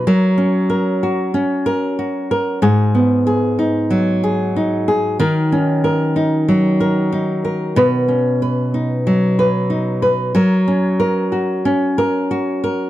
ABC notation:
X:1
M:4/4
L:1/8
Q:1/4=93
K:F#
V:1 name="Nylon-string guitar"
[F,A] C A F C A F A | [G,,G] B, G D F, G D G | [D,A] C A D F, A D A | [B,,B] C B D F, B D B |
[F,A] C A F C A F A |]